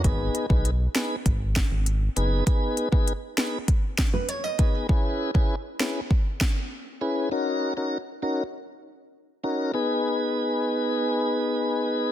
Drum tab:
HH |x-x-x-x-x-x-x-x-|x-x-x-x-x-x-x-x-|----------------|----------------|
SD |------o---o-----|------o---o-----|------o---o-----|----------------|
BD |o--o----o-o-----|o--o----o-o---o-|o--o----o-o-----|----------------|

HH |----------------|
SD |----------------|
BD |----------------|